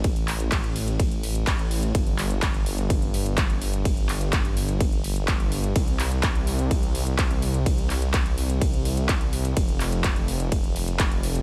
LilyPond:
<<
  \new Staff \with { instrumentName = "Detuned saw bass" } { \clef bass \time 4/4 \key a \minor \tempo 4 = 126 a,,1 | g,,1~ | g,,1 | c,1~ |
c,1 | f,,1 | }
  \new DrumStaff \with { instrumentName = "Drums" } \drummode { \time 4/4 <hh bd cymr>16 hh16 <hc hho>16 hh16 <hc hh bd cymr>16 hh16 hho16 hh16 <hh bd cymr>16 hh16 hho16 hh16 <hc hh bd cymr>16 hh16 hho16 hh16 | <hh bd cymr>16 hh16 <hc hho>16 hh16 <hc hh bd cymr>16 hh16 hho16 hh16 <hh bd cymr>16 hh16 hho16 hh16 <hc hh bd cymr>16 hh16 hho16 hh16 | <hh bd cymr>16 hh16 <hc hho>16 hh16 <hc hh bd cymr>16 hh16 hho16 hh16 <hh bd cymr>16 hh16 hho16 hh16 <hc hh bd cymr>16 hh16 hho16 hh16 | <hh bd cymr>16 hh16 <hc hho>16 hh16 <hc hh bd cymr>16 hh16 hho16 hh16 <hh bd cymr>16 hh16 hho16 hh16 <hc hh bd cymr>16 hh16 hho16 hh16 |
<hh bd cymr>16 hh16 <hc hho>16 hh16 <hc hh bd cymr>16 hh16 hho16 hh16 <hh bd cymr>16 hh16 hho16 hh16 <hc hh bd cymr>16 hh16 hho16 hh16 | <hh bd cymr>16 hh16 <hc hho>16 hh16 <hc hh bd cymr>16 hh16 hho16 hh16 <hh bd cymr>16 hh16 hho16 hh16 <hc hh bd cymr>16 hh16 hho16 hh16 | }
>>